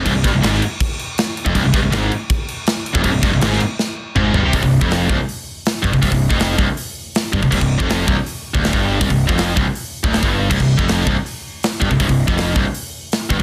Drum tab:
CC |x-x-x-x-x-x-x-x-|x-x-x-x-x-x-x-x-|x-x-x-x---------|----------------|
HH |----------------|----------------|----------------|o---o---o---o---|
SD |--o-oo------o---|--o-o-------o---|--o-oo--o-------|----o-------o---|
T2 |----------------|----------------|------------o---|----------------|
FT |----------------|----------------|--------------o-|----------------|
BD |o-o-----o------o|o-o-----o------o|o-o-------------|oo-o--o-------oo|

CC |----------------|x---------------|----------------|x---------------|
HH |o---o---o---o---|----o---o---o---|o---o---o---o---|----o---o---o---|
SD |----o-------o---|----o-------o---|----o-------o---|----o-------o---|
T2 |----------------|----------------|----------------|----------------|
FT |----------------|----------------|----------------|----------------|
BD |oo-o--o-------oo|oo-o--o----o-o--|oo-o--o----o-o--|oo-o--o-------oo|

CC |----------------|
HH |o---o---o---o---|
SD |----o-------o---|
T2 |----------------|
FT |----------------|
BD |oo-o--o-------oo|